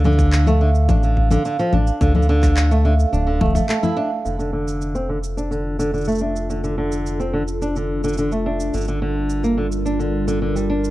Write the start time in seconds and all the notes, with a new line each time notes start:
Already playing: D2
0.04 D3 F5, low conga, cabasa
0.12 cabasa
0.19 kick, cabasa
0.32 clap, cabasa
0.47 A3 F5, low conga, cabasa
0.61 D3
0.75 F5, cabasa
0.89 A1 D4, kick, low conga, cabasa
1.03 D3 F5, cabasa
1.17 kick
1.31 D3, low conga, cabasa
1.45 D3 F5, cabasa
1.59 F3, cabasa
1.73 A1 D4 F5, low conga
1.87 cabasa
2.01 D2 D3 F5, kick, cabasa
2.15 D3, low conga
2.22 cabasa
2.29 D3
2.43 F5, kick, clap, cabasa
2.57 clap, cabasa
2.71 A3 F5, cabasa
2.85 D3
2.98 F5, cabasa
3.13 D1 D4, cabasa
3.27 D3
3.40 D1 A3 F5, kick, low conga
3.46 low conga
3.51 low conga
3.55 A3, kick, low conga, cabasa
3.60 low conga
3.64 low conga
3.68 A3 A5, clap, cabasa
3.83 E4, low conga, cabasa
3.97 D4 F5
4.25 F1 D3 D4 F4 A4, cabasa
4.39 D3, cabasa
4.53 D3
4.68 cabasa
4.82 cabasa
4.95 C4, cabasa
5.09 D3
5.24 cabasa
5.37 D4, cabasa
5.51 D3, cabasa
5.79 D3, cabasa
5.93 D3, cabasa
5.97 cabasa
6.01 cabasa
6.05 A3, cabasa
6.08 cabasa
6.12 cabasa
6.15 cabasa
6.18 D4, cabasa
6.36 cabasa
6.50 D3, cabasa
6.64 D3, cabasa
6.78 D3
6.92 cabasa
7.06 cabasa
7.20 C4, cabasa
7.33 D3
7.48 cabasa
7.62 D4, cabasa
7.76 D3, cabasa
8.04 D3, cabasa
8.08 cabasa
8.13 cabasa
8.18 D3, cabasa
8.32 A3, cabasa
8.46 D4
8.60 cabasa
8.74 G1 D3 G3 A#4, cabasa
8.77 cabasa
8.81 cabasa
8.85 cabasa
8.88 D3, cabasa
9.02 D3
9.30 cabasa
9.44 A#3, cabasa
9.58 D3
9.72 cabasa
9.85 D4, cabasa
9.99 D3, cabasa
10.28 D3, cabasa
10.42 D3
10.56 G3, cabasa
10.70 D4
10.84 cabasa